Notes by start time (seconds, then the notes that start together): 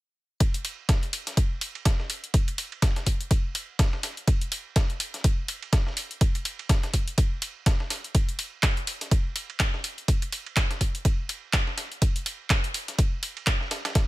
0.40 kick, closed hi-hat, ride
0.54 closed hi-hat
0.65 open hi-hat, ride
0.89 kick, snare, closed hi-hat, ride
1.03 closed hi-hat
1.13 open hi-hat, ride
1.27 snare, closed hi-hat
1.37 kick, closed hi-hat, ride
1.61 open hi-hat, ride
1.75 ride
1.85 kick, snare, closed hi-hat, ride
1.99 snare
2.10 open hi-hat, ride
2.24 closed hi-hat
2.34 kick, closed hi-hat, ride
2.48 closed hi-hat, ride
2.58 open hi-hat, ride
2.72 ride
2.82 kick, snare, closed hi-hat, ride
2.96 snare, closed hi-hat
3.06 kick, open hi-hat, ride
3.21 closed hi-hat
3.31 kick, closed hi-hat, ride
3.55 open hi-hat, ride
3.79 kick, snare, closed hi-hat, ride
3.93 snare
4.03 snare, open hi-hat, ride
4.17 closed hi-hat
4.27 kick, closed hi-hat, ride
4.41 closed hi-hat
4.52 open hi-hat, ride
4.76 kick, snare, closed hi-hat, ride
4.90 closed hi-hat
5.00 open hi-hat, ride
5.14 snare, closed hi-hat
5.24 kick, closed hi-hat, ride
5.48 open hi-hat, ride
5.62 ride
5.73 kick, snare, closed hi-hat, ride
5.87 snare
5.97 open hi-hat, ride
6.11 closed hi-hat
6.21 kick, closed hi-hat, ride
6.35 closed hi-hat, ride
6.45 open hi-hat, ride
6.59 ride
6.69 kick, snare, closed hi-hat, ride
6.83 snare, closed hi-hat
6.94 kick, open hi-hat, ride
7.08 closed hi-hat
7.18 kick, closed hi-hat, ride
7.42 open hi-hat, ride
7.66 kick, snare, closed hi-hat, ride
7.80 snare
7.90 snare, open hi-hat, ride
8.04 closed hi-hat
8.15 kick, closed hi-hat, ride
8.29 closed hi-hat
8.39 open hi-hat, ride
8.63 kick, snare, clap, closed hi-hat, ride
8.77 closed hi-hat
8.87 open hi-hat, ride
9.01 snare, closed hi-hat
9.11 kick, closed hi-hat, ride
9.36 open hi-hat, ride
9.50 ride
9.60 kick, snare, clap, closed hi-hat, ride
9.74 snare
9.84 open hi-hat, ride
9.98 closed hi-hat
10.08 kick, closed hi-hat, ride
10.22 closed hi-hat, ride
10.32 open hi-hat, ride
10.46 ride
10.56 kick, snare, clap, closed hi-hat, ride
10.71 snare, closed hi-hat
10.81 kick, open hi-hat, ride
10.95 closed hi-hat
11.05 kick, closed hi-hat, ride
11.29 open hi-hat, ride
11.53 kick, snare, clap, closed hi-hat, ride
11.67 snare
11.78 snare, open hi-hat, ride
11.92 closed hi-hat
12.02 kick, closed hi-hat, ride
12.16 closed hi-hat
12.26 open hi-hat, ride
12.50 kick, snare, clap, closed hi-hat, ride
12.64 closed hi-hat
12.74 open hi-hat, ride
12.88 snare, closed hi-hat
12.99 kick, closed hi-hat, ride
13.23 open hi-hat, ride
13.37 ride
13.47 kick, snare, clap, closed hi-hat, ride
13.61 snare
13.71 snare, open hi-hat, ride
13.85 snare, closed hi-hat, ride
13.95 kick, snare, closed hi-hat, ride